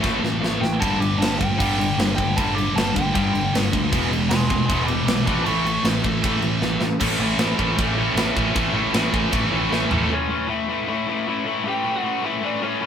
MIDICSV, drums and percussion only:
0, 0, Header, 1, 2, 480
1, 0, Start_track
1, 0, Tempo, 387597
1, 1004, Time_signature, 4, 2, 24, 8
1, 15927, End_track
2, 0, Start_track
2, 0, Title_t, "Drums"
2, 48, Note_on_c, 9, 36, 108
2, 70, Note_on_c, 9, 38, 61
2, 171, Note_off_c, 9, 36, 0
2, 194, Note_off_c, 9, 38, 0
2, 306, Note_on_c, 9, 38, 69
2, 430, Note_off_c, 9, 38, 0
2, 550, Note_on_c, 9, 38, 93
2, 674, Note_off_c, 9, 38, 0
2, 787, Note_on_c, 9, 38, 81
2, 911, Note_off_c, 9, 38, 0
2, 1015, Note_on_c, 9, 36, 109
2, 1024, Note_on_c, 9, 49, 80
2, 1139, Note_off_c, 9, 36, 0
2, 1148, Note_off_c, 9, 49, 0
2, 1264, Note_on_c, 9, 49, 60
2, 1387, Note_off_c, 9, 49, 0
2, 1510, Note_on_c, 9, 49, 97
2, 1517, Note_on_c, 9, 38, 126
2, 1634, Note_off_c, 9, 49, 0
2, 1641, Note_off_c, 9, 38, 0
2, 1744, Note_on_c, 9, 36, 82
2, 1755, Note_on_c, 9, 49, 57
2, 1868, Note_off_c, 9, 36, 0
2, 1879, Note_off_c, 9, 49, 0
2, 1984, Note_on_c, 9, 36, 114
2, 1995, Note_on_c, 9, 49, 92
2, 2108, Note_off_c, 9, 36, 0
2, 2119, Note_off_c, 9, 49, 0
2, 2242, Note_on_c, 9, 49, 68
2, 2366, Note_off_c, 9, 49, 0
2, 2468, Note_on_c, 9, 49, 90
2, 2475, Note_on_c, 9, 38, 116
2, 2591, Note_off_c, 9, 49, 0
2, 2599, Note_off_c, 9, 38, 0
2, 2702, Note_on_c, 9, 36, 77
2, 2703, Note_on_c, 9, 49, 56
2, 2826, Note_off_c, 9, 36, 0
2, 2827, Note_off_c, 9, 49, 0
2, 2945, Note_on_c, 9, 36, 122
2, 2945, Note_on_c, 9, 49, 81
2, 3069, Note_off_c, 9, 36, 0
2, 3069, Note_off_c, 9, 49, 0
2, 3197, Note_on_c, 9, 49, 58
2, 3321, Note_off_c, 9, 49, 0
2, 3436, Note_on_c, 9, 49, 88
2, 3444, Note_on_c, 9, 38, 121
2, 3560, Note_off_c, 9, 49, 0
2, 3567, Note_off_c, 9, 38, 0
2, 3669, Note_on_c, 9, 36, 80
2, 3673, Note_on_c, 9, 49, 61
2, 3793, Note_off_c, 9, 36, 0
2, 3797, Note_off_c, 9, 49, 0
2, 3906, Note_on_c, 9, 36, 112
2, 3909, Note_on_c, 9, 49, 75
2, 4030, Note_off_c, 9, 36, 0
2, 4033, Note_off_c, 9, 49, 0
2, 4150, Note_on_c, 9, 49, 60
2, 4274, Note_off_c, 9, 49, 0
2, 4396, Note_on_c, 9, 49, 88
2, 4403, Note_on_c, 9, 38, 121
2, 4520, Note_off_c, 9, 49, 0
2, 4527, Note_off_c, 9, 38, 0
2, 4621, Note_on_c, 9, 49, 54
2, 4623, Note_on_c, 9, 36, 92
2, 4745, Note_off_c, 9, 49, 0
2, 4747, Note_off_c, 9, 36, 0
2, 4863, Note_on_c, 9, 36, 113
2, 4866, Note_on_c, 9, 49, 89
2, 4987, Note_off_c, 9, 36, 0
2, 4990, Note_off_c, 9, 49, 0
2, 5115, Note_on_c, 9, 49, 62
2, 5238, Note_off_c, 9, 49, 0
2, 5332, Note_on_c, 9, 49, 98
2, 5340, Note_on_c, 9, 38, 122
2, 5456, Note_off_c, 9, 49, 0
2, 5463, Note_off_c, 9, 38, 0
2, 5574, Note_on_c, 9, 49, 58
2, 5576, Note_on_c, 9, 36, 87
2, 5698, Note_off_c, 9, 49, 0
2, 5700, Note_off_c, 9, 36, 0
2, 5816, Note_on_c, 9, 36, 108
2, 5818, Note_on_c, 9, 49, 80
2, 5940, Note_off_c, 9, 36, 0
2, 5942, Note_off_c, 9, 49, 0
2, 6046, Note_on_c, 9, 49, 63
2, 6169, Note_off_c, 9, 49, 0
2, 6290, Note_on_c, 9, 49, 89
2, 6298, Note_on_c, 9, 38, 126
2, 6414, Note_off_c, 9, 49, 0
2, 6421, Note_off_c, 9, 38, 0
2, 6531, Note_on_c, 9, 49, 59
2, 6532, Note_on_c, 9, 36, 102
2, 6655, Note_off_c, 9, 36, 0
2, 6655, Note_off_c, 9, 49, 0
2, 6765, Note_on_c, 9, 49, 81
2, 6889, Note_off_c, 9, 49, 0
2, 7014, Note_on_c, 9, 49, 63
2, 7138, Note_off_c, 9, 49, 0
2, 7242, Note_on_c, 9, 49, 83
2, 7249, Note_on_c, 9, 38, 117
2, 7366, Note_off_c, 9, 49, 0
2, 7373, Note_off_c, 9, 38, 0
2, 7477, Note_on_c, 9, 49, 60
2, 7486, Note_on_c, 9, 36, 80
2, 7601, Note_off_c, 9, 49, 0
2, 7609, Note_off_c, 9, 36, 0
2, 7721, Note_on_c, 9, 49, 81
2, 7727, Note_on_c, 9, 36, 124
2, 7845, Note_off_c, 9, 49, 0
2, 7851, Note_off_c, 9, 36, 0
2, 7954, Note_on_c, 9, 49, 61
2, 8078, Note_off_c, 9, 49, 0
2, 8200, Note_on_c, 9, 38, 75
2, 8324, Note_off_c, 9, 38, 0
2, 8429, Note_on_c, 9, 38, 95
2, 8553, Note_off_c, 9, 38, 0
2, 8673, Note_on_c, 9, 49, 62
2, 8673, Note_on_c, 9, 57, 113
2, 8681, Note_on_c, 9, 36, 111
2, 8797, Note_off_c, 9, 49, 0
2, 8797, Note_off_c, 9, 57, 0
2, 8805, Note_off_c, 9, 36, 0
2, 9148, Note_on_c, 9, 49, 74
2, 9155, Note_on_c, 9, 38, 119
2, 9271, Note_off_c, 9, 49, 0
2, 9279, Note_off_c, 9, 38, 0
2, 9400, Note_on_c, 9, 36, 83
2, 9524, Note_off_c, 9, 36, 0
2, 9639, Note_on_c, 9, 49, 66
2, 9643, Note_on_c, 9, 36, 119
2, 9763, Note_off_c, 9, 49, 0
2, 9767, Note_off_c, 9, 36, 0
2, 10118, Note_on_c, 9, 49, 73
2, 10126, Note_on_c, 9, 38, 125
2, 10242, Note_off_c, 9, 49, 0
2, 10250, Note_off_c, 9, 38, 0
2, 10360, Note_on_c, 9, 36, 77
2, 10484, Note_off_c, 9, 36, 0
2, 10599, Note_on_c, 9, 36, 106
2, 10604, Note_on_c, 9, 49, 64
2, 10723, Note_off_c, 9, 36, 0
2, 10728, Note_off_c, 9, 49, 0
2, 11071, Note_on_c, 9, 49, 65
2, 11078, Note_on_c, 9, 38, 124
2, 11194, Note_off_c, 9, 49, 0
2, 11202, Note_off_c, 9, 38, 0
2, 11316, Note_on_c, 9, 36, 78
2, 11440, Note_off_c, 9, 36, 0
2, 11545, Note_on_c, 9, 49, 61
2, 11554, Note_on_c, 9, 36, 113
2, 11669, Note_off_c, 9, 49, 0
2, 11678, Note_off_c, 9, 36, 0
2, 12047, Note_on_c, 9, 38, 77
2, 12170, Note_off_c, 9, 38, 0
2, 12273, Note_on_c, 9, 43, 99
2, 12397, Note_off_c, 9, 43, 0
2, 15927, End_track
0, 0, End_of_file